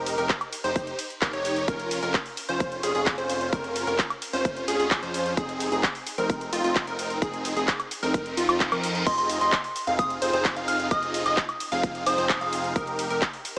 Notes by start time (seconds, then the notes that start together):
Already playing: F1 D#4 G4 A#4
0.06 open hi-hat, ride, shaker
0.18 F1 D#4 G4 A#4, closed hi-hat, shaker
0.29 kick, clap, closed hi-hat, shaker
0.41 closed hi-hat, high woodblock, shaker
0.53 open hi-hat, ride, shaker
0.64 F1 D#4 G4 C5, open hi-hat, shaker
0.76 kick, closed hi-hat, shaker
0.87 closed hi-hat, shaker
0.99 open hi-hat, ride, shaker
1.10 closed hi-hat, shaker
1.22 F1 D#4 G4 A#4, kick, clap, closed hi-hat, shaker
1.33 F1 D#4 G4 C#5, closed hi-hat, shaker
1.45 open hi-hat, ride, shaker
1.56 closed hi-hat, shaker
1.68 F1 C#4 F4 A#4, kick, closed hi-hat, shaker
1.80 closed hi-hat, shaker
1.91 open hi-hat, ride, shaker
2.03 F1 C#4 F4 A#4, closed hi-hat, shaker
2.14 kick, clap, closed hi-hat, shaker
2.26 open hi-hat, shaker
2.37 open hi-hat, ride, shaker
2.49 F1 C#4 F4 C5, closed hi-hat, shaker
2.60 kick, closed hi-hat, shaker
2.72 closed hi-hat, shaker
2.83 F1 C#4 F4 G#4, open hi-hat, ride, shaker
2.95 F1 C#4 F4 G#4, closed hi-hat, shaker
3.06 kick, clap, closed hi-hat, shaker
3.18 F1 C#4 F4 C5, closed hi-hat, shaker
3.30 open hi-hat, ride, shaker
3.41 closed hi-hat, shaker
3.52 F1 C#4 F4 A#4, kick, closed hi-hat, shaker
3.64 closed hi-hat, shaker
3.76 open hi-hat, ride, shaker
3.87 F1 C#4 F4 A#4, closed hi-hat, shaker
3.99 kick, clap, closed hi-hat, shaker
4.10 closed hi-hat, high woodblock, shaker
4.22 open hi-hat, ride, shaker
4.33 F1 C#4 F4 C5, open hi-hat, shaker
4.45 kick, closed hi-hat, shaker
4.57 closed hi-hat, shaker
4.68 F1 C#4 F4 G#4, open hi-hat, ride, shaker
4.79 F1 C#4 F4 G#4, closed hi-hat, shaker
4.91 kick, clap, closed hi-hat, shaker
5.02 F2 C#4 F4 C5, closed hi-hat, shaker
5.14 open hi-hat, ride, shaker
5.26 closed hi-hat, shaker
5.37 F1 C4 D#4 G#4, kick, closed hi-hat, shaker
5.49 closed hi-hat, shaker
5.60 open hi-hat, ride, shaker
5.72 F1 C4 D#4 G#4, closed hi-hat, shaker
5.83 kick, clap, closed hi-hat, shaker
5.95 open hi-hat, shaker
6.07 open hi-hat, ride, shaker
6.18 F1 C4 D#4 A#4, closed hi-hat, shaker
6.30 kick, closed hi-hat, shaker
6.41 closed hi-hat, shaker
6.53 F1 C4 D#4 F4, open hi-hat, ride, shaker
6.64 F1 C4 D#4 F4, closed hi-hat, shaker
6.76 kick, clap, closed hi-hat, shaker
6.87 F1 C4 D#4 A#4, closed hi-hat, shaker
6.99 open hi-hat, ride, shaker
7.10 closed hi-hat, shaker
7.22 F1 C4 D#4 G#4, kick, closed hi-hat, shaker
7.34 closed hi-hat, shaker
7.45 open hi-hat, ride, shaker
7.56 F1 C4 D#4 G#4, closed hi-hat, shaker
7.68 kick, clap, closed hi-hat, shaker
7.80 closed hi-hat, high woodblock, shaker
7.91 open hi-hat, ride, shaker
8.03 F1 C4 D#4 A#4, open hi-hat, shaker
8.14 kick, closed hi-hat, reverse cymbal, shaker
8.26 closed hi-hat, shaker
8.37 F1 C4 D#4 F4, open hi-hat, ride, shaker
8.49 F1 C4 D#4 F4, closed hi-hat, high woodblock, shaker
8.60 kick, clap, closed hi-hat, shaker
8.72 F2 C4 D#4 A#4, closed hi-hat, high woodblock, shaker
8.83 open hi-hat, ride, shaker
8.95 closed hi-hat, shaker
9.06 F1 D#4 G#4 D#5 C6, kick, closed hi-hat, crash, shaker
9.18 C6, closed hi-hat, shaker
9.30 open hi-hat, ride, shaker
9.41 F1 C4 D#4 F4 G#4 D#5 C6, closed hi-hat, shaker
9.52 C6, kick, clap, closed hi-hat, shaker
9.64 open hi-hat, shaker
9.76 open hi-hat, ride, shaker
9.87 F1 C4 D#4 F4 G#4 F5, closed hi-hat, shaker
9.99 D#6, kick, closed hi-hat, shaker
10.10 closed hi-hat, shaker
10.22 F1 C4 D#4 F4 G#4 C5, open hi-hat, ride, shaker
10.33 F1 C4 D#4 F4 G#4 C5, closed hi-hat, shaker
10.45 kick, clap, closed hi-hat, shaker
10.56 F1 C4 D#4 F4 G#4 F5, closed hi-hat, shaker
10.68 F6, open hi-hat, ride, shaker
10.80 closed hi-hat, shaker
10.91 F1 C4 D#4 D#5 D#6, kick, closed hi-hat, shaker
11.03 closed hi-hat, shaker
11.14 open hi-hat, ride, shaker
11.26 F1 C4 D#4 F4 G#4 D#5 D#6, closed hi-hat, shaker
11.37 kick, clap, closed hi-hat, shaker
11.49 closed hi-hat, high woodblock, shaker
11.60 open hi-hat, ride, shaker
11.72 F1 C4 D#4 F4 G#4 F5, open hi-hat, shaker
11.83 kick, closed hi-hat, shaker
11.95 closed hi-hat, shaker
12.06 F1 C4 D#4 F4 G#4 C5 D#6, open hi-hat, ride, shaker
12.18 F1 C4 D#4 F4 G#4 C5, closed hi-hat, shaker
12.29 kick, clap, closed hi-hat, shaker
12.41 F1 C4 D#4 F4 G#4 F5, closed hi-hat, shaker
12.53 open hi-hat, ride, shaker
12.64 closed hi-hat, shaker
12.76 F1 A#4, kick, closed hi-hat, shaker
12.87 closed hi-hat, shaker
12.99 open hi-hat, ride, shaker
13.10 F1 D#4 G4 A#4, closed hi-hat, shaker
13.22 kick, clap, closed hi-hat, shaker
13.33 open hi-hat, shaker
13.45 open hi-hat, ride, shaker